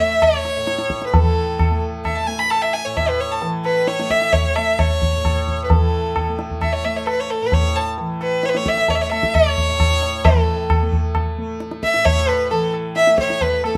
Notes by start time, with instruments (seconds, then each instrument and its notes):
Already playing: tanpura A2 E3
0.00 tanpura A3, violin E5
0.22 violin C#5, tabla na, tabla ge
0.45 tabla te
0.56 tanpura A2
0.67 tabla te
0.79 tabla te
0.90 tabla ke
1.02 tabla te
1.06 violin B4
1.14 tanpura E3, violin A4, tabla tin, tabla ge
1.59 tabla na, tabla ge
1.71 tanpura A3
2.05 violin E5, tabla na, tabla ge
2.16 violin A5
2.27 tanpura A3, violin G#5
2.39 violin B5
2.50 violin A5, tabla na
2.62 violin E5
2.73 violin G#5
2.85 tanpura A2, violin C#5
2.97 violin E5, tabla tin, tabla ge
3.09 violin B4
3.20 violin C#5
3.32 violin A5
3.41 tanpura E3, tabla tin
3.65 violin B4, tabla na
3.87 violin C#5, tabla te
4.00 tanpura A3, tabla te
4.10 violin E5, tabla ke
4.22 tabla te
4.33 violin C#5, tabla tin, tabla ge
4.56 tanpura A3, violin E5, tabla na
4.79 violin C#5, tabla na, tabla ge
5.02 tabla ge
5.15 tanpura A2
5.25 tabla na, tabla ge
5.47 tabla ge
5.64 violin B4
5.69 tanpura E3, violin A4, tabla tin, tabla ge
6.16 tabla na, tabla ge
6.29 tanpura A3
6.39 tabla te
6.50 tabla ge
6.62 violin E5, tabla na, tabla ge
6.73 violin C#5
6.84 tanpura A3, violin E5
6.97 violin C#5
7.07 violin B4, tabla na
7.20 violin C#5
7.31 violin A4
7.41 tanpura A2, violin B4
7.52 violin C#5, tabla tin, tabla ge
7.76 violin A5
7.98 tanpura E3, tabla tin
8.21 violin B4, tabla na
8.43 violin C#5, tabla te
8.49 violin B4
8.55 tanpura A3, violin C#5, tabla te
8.66 violin E5, tabla ke
8.77 tabla te
8.88 violin C#5, tabla tin, tabla ge
8.95 violin E5
9.01 violin C#5
9.12 tanpura A3, violin E5, tabla na
9.23 tabla ke
9.34 violin C#5, tabla na, tabla ge
9.57 tabla ge
9.69 tanpura A2
9.80 tabla na, tabla ge
10.02 tabla te
10.25 tanpura E3, violin A4, tabla tin, tabla ge
10.70 tabla na, tabla ge
10.82 tanpura A3
10.92 tabla ge
11.15 tabla na, tabla ge
11.38 tanpura A3
11.60 tabla te
11.71 tabla te
11.83 violin E5, tabla ke
11.94 tanpura A2, tabla te
12.05 violin C#5, tabla tin, tabla ge
12.28 violin B4, tabla na
12.51 tanpura E3, violin A4, tabla tin
12.74 tabla na
12.96 violin E5, tabla te
13.07 tanpura A3, tabla te
13.18 violin C#5, tabla ke
13.30 tabla te
13.41 violin B4, tabla tin, tabla ge
13.64 tanpura A3, violin A4, tabla na